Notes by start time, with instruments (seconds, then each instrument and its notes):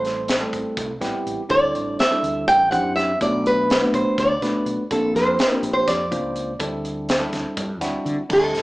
Already playing: fretless electric bass A1, tine electric piano G3 A3 C4 E4 A4, nylon-string guitar C5
0.05 snare, closed hi-hat
0.28 snare, closed hi-hat
0.40 tine electric piano G3 A3 C4 E4 A4
0.53 fretless electric bass A1, kick, closed hi-hat
0.77 fretless electric bass C2, kick, closed hi-hat
1.01 fretless electric bass A1, tine electric piano G3 B3 C4 E4 G4, kick, snare, closed hi-hat
1.26 fretless electric bass A1, closed hi-hat
1.49 fretless electric bass D2, tine electric piano G3 C4 D4 E4 A4, nylon-string guitar D5, kick, closed hi-hat
1.75 fretless electric bass A1, closed hi-hat
1.99 nylon-string guitar E5, snare, closed hi-hat
2.10 tine electric piano G3 C4 D4 E4 A4
2.23 fretless electric bass D2, closed hi-hat
2.48 fretless electric bass A1, nylon-string guitar G5, kick, closed hi-hat
2.71 fretless electric bass F#2, tine electric piano C4 D4 E4 G4 C5, nylon-string guitar F#5, kick, closed hi-hat
2.96 nylon-string guitar E5, snare, closed hi-hat
3.21 fretless electric bass B1, tine electric piano A3 B3 D4 F#4 A4, nylon-string guitar D5, kick, closed hi-hat
3.46 nylon-string guitar B4, closed hi-hat
3.70 snare, closed hi-hat
3.82 tine electric piano A3 B3 D4 F#4 B4
3.94 fretless electric bass B1, nylon-string guitar C5, kick, closed hi-hat
4.18 fretless electric bass D2, nylon-string guitar D5, kick, closed hi-hat
4.42 fretless electric bass B1, tine electric piano A3 B3 D4 F#4 B4, kick, snare, closed hi-hat
4.66 fretless electric bass B1, closed hi-hat
4.90 fretless electric bass A#1, tine electric piano A#3 C4 D4 F4 A4, nylon-string guitar A4, kick, closed hi-hat
5.15 fretless electric bass F2, nylon-string guitar C5, snare, closed hi-hat
5.39 snare, closed hi-hat
5.51 tine electric piano A#3 C4 D4 F4 G4
5.63 fretless electric bass A#1, closed hi-hat
5.73 nylon-string guitar C5
5.88 fretless electric bass F2, nylon-string guitar D5, kick, snare, closed hi-hat
6.11 fretless electric bass C#2, tine electric piano A#3 C4 D4 F4 C5, kick, closed hi-hat
6.36 closed hi-hat
6.59 fretless electric bass D2, tine electric piano G3 C4 D4 E4 A4, kick, closed hi-hat
6.85 closed hi-hat
7.09 snare, closed hi-hat
7.20 tine electric piano G3 C4 D4 E4 A4
7.33 fretless electric bass D2, kick, snare, closed hi-hat
7.57 fretless electric bass G2, kick, closed hi-hat
7.81 fretless electric bass D2, tine electric piano G3 C4 D4 E4 F#4, kick, snare, closed hi-hat
8.05 fretless electric bass D3, closed hi-hat
8.29 fretless electric bass D2, tine electric piano G3 C4 D4 E4 A4, nylon-string guitar A4, kick, crash
8.53 fretless electric bass A1, snare, closed hi-hat